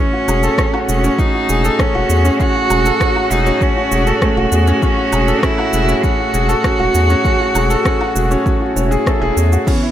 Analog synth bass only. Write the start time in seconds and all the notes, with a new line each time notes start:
0.28 E1
0.89 E1
1.49 E1
1.95 E1
2.10 E2
2.70 E1
3.31 E1
3.92 E1
4.37 E1
4.52 E2
5.13 E1
5.73 E1
6.34 E1
6.79 E1
6.95 E2
7.55 E1
8.16 E1
8.76 E1
9.22 E1
9.37 E2